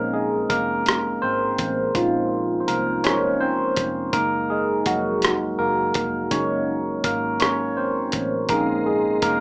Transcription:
Already playing: fingered electric bass A#1, tine electric piano G#3 A#3 C4 C#4 D#4 A#4
0.13 tine electric piano G#3 G#4
0.50 fingered electric bass F1, tine electric piano A#3 A#4, kick, closed hi-hat
0.86 cross-stick, closed hi-hat
1.22 fingered electric bass G#1, tine electric piano C4 C5
1.58 fingered electric bass A1, kick, closed hi-hat
1.95 fingered electric bass A#1, tine electric piano F3 G#3 C#4 D#4 F4, kick, closed hi-hat
2.60 tine electric piano C5
2.68 fingered electric bass C2, tine electric piano A#3 A#4, closed hi-hat
3.04 tine electric piano G#3 C#4 D#4 C5 C#5, cross-stick, closed hi-hat
3.40 tine electric piano C4 C5
3.76 fingered electric bass F1, kick, closed hi-hat
4.13 fingered electric bass F#1, tine electric piano G#3 A#3 D#4 A#4, kick, closed hi-hat
4.50 tine electric piano G#3 G#4
4.86 fingered electric bass F1, tine electric piano F#3 F#4, kick, closed hi-hat
5.22 cross-stick, closed hi-hat
5.59 fingered electric bass F#1, tine electric piano A#3 A#4
5.94 fingered electric bass F1, kick, closed hi-hat
6.31 fingered electric bass F#1, tine electric piano G#3 A#3 C#4 D#4 C#5, kick, closed hi-hat
7.04 fingered electric bass G#1, tine electric piano A#3 A#4, kick, closed hi-hat
7.40 tine electric piano C#4 C#5, cross-stick, closed hi-hat
7.77 tine electric piano C4 C5
8.12 fingered electric bass A1, kick, closed hi-hat
8.49 fingered electric bass A#1, tine electric piano G#3 A#3 C4 C#4 D#4 A#4, tonewheel organ G#4 D#5 A#5 C6, kick, closed hi-hat
8.86 tine electric piano G#3 G#4
9.22 fingered electric bass F1, tine electric piano A#3 A#4, kick, closed hi-hat

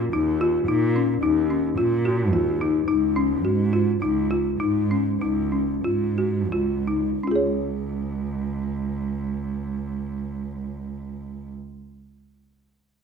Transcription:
0.13 cello D#2, marimba D#4
0.41 marimba F4
0.68 cello A#2, marimba D#4
0.96 marimba C#4
1.23 cello D#2, marimba D#4
1.50 marimba C#4
1.78 cello A#2, marimba F4
2.05 marimba F#4
2.33 cello D#2, marimba F4
2.61 marimba D#4
2.88 cello C#2, marimba D#4
3.16 marimba C#4
3.45 cello G#2, marimba F#4
3.73 marimba F4
4.02 cello C#2, marimba D#4
4.31 marimba F4
4.60 cello G#2, marimba D#4
4.91 marimba C#4
5.21 cello C#2, marimba D#4
5.52 marimba C#4
5.84 cello G#2, marimba F4
6.18 marimba F#4
6.52 cello C#2, marimba F4
6.87 marimba D#4
7.22 cello C#2, marimba C#4
7.27 marimba F4 G#4
7.36 marimba C#5

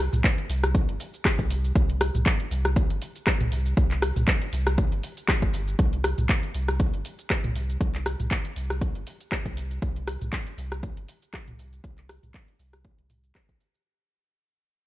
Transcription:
0.13 sub bass C2, closed hi-hat, mid tom, shaker
0.24 kick, clap, closed hi-hat, shaker
0.38 closed hi-hat
0.49 sub bass C2, open hi-hat, shaker
0.64 cross-stick, shaker
0.75 kick, closed hi-hat, shaker
0.89 sub bass G1, closed hi-hat
1.00 open hi-hat, shaker
1.14 closed hi-hat, shaker
1.25 kick, cross-stick, clap, closed hi-hat, shaker
1.39 sub bass C2, kick, closed hi-hat
1.51 open hi-hat, shaker
1.64 closed hi-hat, shaker
1.76 sub bass C2, kick, closed hi-hat, shaker
1.89 closed hi-hat
2.01 cross-stick, open hi-hat, shaker
2.15 sub bass C2, closed hi-hat, mid tom, shaker
2.26 kick, clap, closed hi-hat, shaker
2.40 closed hi-hat
2.51 sub bass C2, open hi-hat, shaker
2.65 cross-stick, shaker
2.76 kick, closed hi-hat, shaker
2.90 sub bass G1, closed hi-hat
3.02 open hi-hat, shaker
3.16 closed hi-hat, shaker
3.27 kick, cross-stick, clap, closed hi-hat, shaker
3.41 sub bass C2, closed hi-hat, mid tom
3.52 open hi-hat, shaker
3.66 closed hi-hat, shaker
3.77 sub bass C2, kick, closed hi-hat, shaker
3.91 clap, closed hi-hat
4.02 cross-stick, open hi-hat, shaker
4.16 sub bass C2, closed hi-hat, mid tom, shaker
4.28 kick, clap, closed hi-hat, shaker
4.42 closed hi-hat
4.53 sub bass C2, open hi-hat, shaker
4.67 cross-stick, shaker
4.78 kick, closed hi-hat, shaker
4.92 sub bass G1, closed hi-hat
5.03 open hi-hat, shaker
5.17 closed hi-hat, shaker
5.28 kick, cross-stick, clap, closed hi-hat, shaker
5.42 sub bass G1, kick, closed hi-hat
5.54 open hi-hat, shaker
5.68 closed hi-hat, shaker
5.79 sub bass C2, kick, closed hi-hat, shaker
5.93 closed hi-hat
6.04 cross-stick, open hi-hat, shaker
6.18 sub bass C2, closed hi-hat, mid tom, shaker
6.29 kick, clap, closed hi-hat, shaker
6.43 closed hi-hat
6.55 sub bass C2, open hi-hat, shaker
6.68 cross-stick, shaker
6.80 kick, closed hi-hat, shaker
6.94 sub bass G1, closed hi-hat
7.05 open hi-hat, shaker
7.19 closed hi-hat, shaker
7.30 kick, cross-stick, clap, closed hi-hat, shaker
7.44 sub bass C2, closed hi-hat, mid tom
7.56 open hi-hat, shaker
7.70 closed hi-hat, shaker
7.81 sub bass C2, kick, closed hi-hat, shaker
7.95 clap, closed hi-hat
8.06 cross-stick, open hi-hat, shaker
8.20 sub bass C2, closed hi-hat, mid tom, shaker
8.31 kick, clap, closed hi-hat, shaker
8.45 closed hi-hat
8.56 sub bass C2, open hi-hat, shaker
8.70 cross-stick, shaker
8.81 kick, closed hi-hat, shaker
8.95 sub bass G1, closed hi-hat
9.07 open hi-hat, shaker
9.21 closed hi-hat, shaker
9.32 kick, cross-stick, clap, closed hi-hat, shaker
9.46 sub bass C2, kick, closed hi-hat
9.57 open hi-hat, shaker
9.71 closed hi-hat, shaker
9.82 sub bass C2, kick, closed hi-hat, shaker
9.96 closed hi-hat
10.08 cross-stick, open hi-hat, shaker
10.21 sub bass C2, closed hi-hat, mid tom, shaker
10.33 kick, clap, closed hi-hat, shaker
10.47 closed hi-hat
10.58 sub bass C2, open hi-hat, shaker
10.72 cross-stick, shaker
10.83 kick, closed hi-hat, shaker
10.97 sub bass G1, closed hi-hat
11.08 open hi-hat, shaker
11.22 closed hi-hat, shaker
11.34 kick, cross-stick, clap, closed hi-hat, shaker
11.47 sub bass C2, closed hi-hat, mid tom
11.59 open hi-hat, shaker
11.73 closed hi-hat, shaker
11.84 sub bass C2, kick, closed hi-hat, shaker
11.98 clap, closed hi-hat
12.09 cross-stick, open hi-hat, shaker
12.23 sub bass C2, closed hi-hat, mid tom, shaker
12.34 kick, clap, closed hi-hat, shaker
12.48 closed hi-hat
12.59 sub bass C2, open hi-hat, shaker
12.73 cross-stick, closed hi-hat, shaker
12.85 kick, closed hi-hat, shaker
12.98 sub bass C2, closed hi-hat
13.10 mid tom, open hi-hat, shaker
13.24 closed hi-hat, shaker
13.35 kick, cross-stick, clap, closed hi-hat, shaker
13.49 sub bass A#1, kick, closed hi-hat
13.61 open hi-hat, shaker
13.74 closed hi-hat, shaker

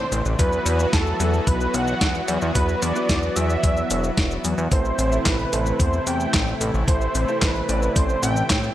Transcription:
Already playing: analog synth pad C3 E3 A3 D4, grand piano C4 E4 A4 D5, analog synth lead C5
0.12 analog synth bass A1, synth arpeggio sound A3, closed hi-hat, cabasa
0.25 analog synth bass A1, cabasa
0.39 analog synth bass E2, synth arpeggio sound F#3, analog synth pad F#3 B3 F#4, grand piano B3 E4 F#4 B4, analog synth lead B4, kick, closed hi-hat, cabasa
0.53 cabasa
0.66 analog synth bass E2, synth arpeggio sound B3, closed hi-hat, cabasa
0.80 grand piano B3 E4 F#4 E5, cabasa
0.93 analog synth bass E2, synth arpeggio sound E4, analog synth lead A4, kick, snare, closed hi-hat, cabasa
1.07 cabasa
1.20 analog synth bass E2, synth arpeggio sound F#3, grand piano B3 E4 F#4 B4, closed hi-hat, cabasa
1.34 cabasa
1.47 analog synth bass B1, synth arpeggio sound F#3, analog synth lead B4, kick, closed hi-hat, cabasa
1.61 cabasa
1.74 analog synth bass B1, synth arpeggio sound B3, analog synth lead F#5, closed hi-hat, cabasa
1.88 cabasa
2.01 analog synth bass E2, synth arpeggio sound E4, kick, snare, closed hi-hat, cabasa
2.15 cabasa
2.28 analog synth bass E2, synth arpeggio sound F#3, closed hi-hat, cabasa
2.42 analog synth bass E2, cabasa
2.55 analog synth bass E2, synth arpeggio sound F#3, grand piano B3 E4 F#4 B4, analog synth lead B4, kick, closed hi-hat, cabasa
2.69 cabasa
2.82 analog synth bass E2, synth arpeggio sound B3, analog synth lead D5, closed hi-hat, cabasa
2.96 grand piano B3 E4 F#4 B4, cabasa
3.09 analog synth bass E2, synth arpeggio sound E4, kick, snare, closed hi-hat, cabasa
3.23 cabasa
3.36 analog synth bass E2, synth arpeggio sound F#3, grand piano B3 E4 F#4 D5, analog synth lead E5, closed hi-hat, cabasa
3.50 cabasa
3.63 analog synth bass E2, synth arpeggio sound F#3, kick, closed hi-hat, cabasa
3.77 cabasa
3.90 analog synth bass E1, synth arpeggio sound B3, closed hi-hat, cabasa
4.04 cabasa
4.17 analog synth bass E1, synth arpeggio sound E4, kick, snare, closed hi-hat, cabasa
4.31 cabasa
4.45 analog synth bass E2, synth arpeggio sound F#3, closed hi-hat, cabasa
4.58 analog synth bass E2, cabasa
4.72 analog synth bass A1, analog synth pad C3 E3 A3 E4, synth arpeggio sound A3, grand piano C4 E4 A4 C5, analog synth lead C5, kick, closed hi-hat, cabasa
4.85 cabasa
4.98 analog synth bass A1, synth arpeggio sound C4, closed hi-hat, cabasa
5.12 grand piano C4 E4 A4 E5, cabasa
5.26 analog synth bass A1, synth arpeggio sound E4, analog synth lead B4, kick, snare, clap, closed hi-hat, cabasa
5.39 cabasa
5.53 analog synth bass A1, grand piano C4 E4 A4 C5, synth arpeggio sound A4, closed hi-hat, cabasa
5.66 cabasa
5.80 analog synth bass E2, synth arpeggio sound A3, analog synth lead C5, kick, closed hi-hat, cabasa
5.93 cabasa
6.07 analog synth bass E2, synth arpeggio sound C4, analog synth lead G5, closed hi-hat, cabasa
6.20 cabasa
6.34 analog synth bass A1, synth arpeggio sound E4, kick, snare, clap, closed hi-hat, cabasa
6.48 cabasa
6.61 analog synth bass A1, synth arpeggio sound A4, closed hi-hat, cabasa
6.74 analog synth bass A1, cabasa
6.88 analog synth bass A1, synth arpeggio sound A3, grand piano C4 E4 A4 C5, analog synth lead C5, kick, closed hi-hat, cabasa
7.02 cabasa
7.15 analog synth bass A1, synth arpeggio sound C4, closed hi-hat, cabasa
7.28 grand piano C4 E4 A4 C5, cabasa
7.42 analog synth bass A1, synth arpeggio sound E4, analog synth lead B4, kick, snare, clap, closed hi-hat, cabasa
7.56 cabasa
7.69 analog synth bass A1, grand piano C4 E4 A4 D5, synth arpeggio sound A4, closed hi-hat, cabasa
7.83 cabasa
7.96 analog synth bass A1, synth arpeggio sound A3, analog synth lead C5, kick, closed hi-hat, cabasa
8.10 cabasa
8.23 analog synth bass A1, synth arpeggio sound C4, analog synth lead G5, closed hi-hat, cabasa
8.37 cabasa
8.50 analog synth bass A2, synth arpeggio sound E4, kick, snare, clap, closed hi-hat, cabasa
8.64 cabasa

